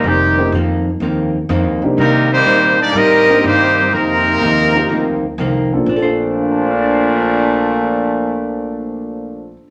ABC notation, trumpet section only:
X:1
M:4/4
L:1/8
Q:"Swing" 1/4=124
K:Bb
V:1 name="Trumpet section"
[CEG]2 z6 | [G,CEB] [B,EGc]2 [B,EGd] [CGBe]2 [B,EGc]2 | [CEB]6 z2 | z8 |
z8 |]